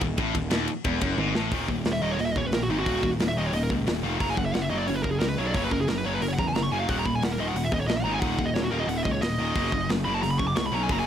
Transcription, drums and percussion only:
0.01 kick, ride
0.18 kick, ride
0.35 kick, ride
0.51 snare, ride
0.68 ride
0.84 kick, ride
1.01 kick, ride
1.18 high tom
1.35 snare
1.51 kick, open hi-hat
1.68 kick
1.85 snare, open hi-hat
2.19 open hi-hat
2.36 kick
2.52 snare, open hi-hat
2.86 kick, open hi-hat
3.03 kick
3.20 snare, open hi-hat
3.53 open hi-hat
3.70 kick
3.87 snare, open hi-hat
4.20 kick, open hi-hat
4.37 kick
4.54 snare, open hi-hat
4.88 open hi-hat
5.04 kick
5.21 snare, open hi-hat
5.54 kick, open hi-hat
5.71 kick
5.88 snare, open hi-hat
6.22 open hi-hat
6.39 kick
6.55 snare, open hi-hat
6.89 kick, open hi-hat
7.06 kick
7.23 snare, open hi-hat
7.56 open hi-hat
7.72 kick
7.89 snare, open hi-hat
8.22 kick, open hi-hat
8.39 kick
8.55 snare, open hi-hat
8.89 open hi-hat
9.05 kick
9.22 snare, open hi-hat
9.56 kick, open hi-hat
9.72 kick
9.90 snare, open hi-hat
10.23 open hi-hat
10.39 kick
10.56 snare, open hi-hat
10.89 kick, open hi-hat

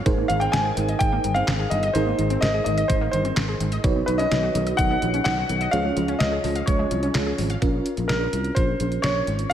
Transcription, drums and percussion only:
0.06 kick, closed hi-hat
0.30 closed hi-hat
0.41 closed hi-hat
0.53 snare, closed hi-hat
0.77 closed hi-hat
0.89 closed hi-hat
1.01 kick, closed hi-hat
1.24 closed hi-hat
1.36 closed hi-hat
1.48 snare, clap, closed hi-hat
1.71 closed hi-hat
1.83 closed hi-hat
1.95 closed hi-hat
2.19 closed hi-hat
2.30 closed hi-hat
2.42 snare, closed hi-hat
2.66 closed hi-hat
2.78 closed hi-hat
2.90 kick, closed hi-hat
3.13 closed hi-hat
3.25 closed hi-hat
3.37 snare, clap, closed hi-hat
3.60 closed hi-hat
3.72 closed hi-hat
3.84 kick, closed hi-hat
4.08 closed hi-hat
4.19 closed hi-hat
4.32 snare, closed hi-hat
4.55 closed hi-hat
4.67 closed hi-hat
4.79 kick, closed hi-hat
5.02 closed hi-hat
5.14 closed hi-hat
5.26 snare, clap, closed hi-hat
5.49 closed hi-hat
5.61 closed hi-hat
5.73 closed hi-hat
5.97 closed hi-hat
6.08 closed hi-hat
6.20 snare, closed hi-hat
6.44 open hi-hat
6.55 closed hi-hat
6.67 kick, closed hi-hat
6.91 closed hi-hat
7.03 closed hi-hat
7.15 snare, clap, closed hi-hat
7.38 open hi-hat
7.50 closed hi-hat
7.62 kick, closed hi-hat
7.86 closed hi-hat
7.97 closed hi-hat
8.09 snare, closed hi-hat
8.33 closed hi-hat
8.44 closed hi-hat
8.56 kick, closed hi-hat
8.80 closed hi-hat
8.92 closed hi-hat
9.04 snare, closed hi-hat
9.27 closed hi-hat
9.39 closed hi-hat

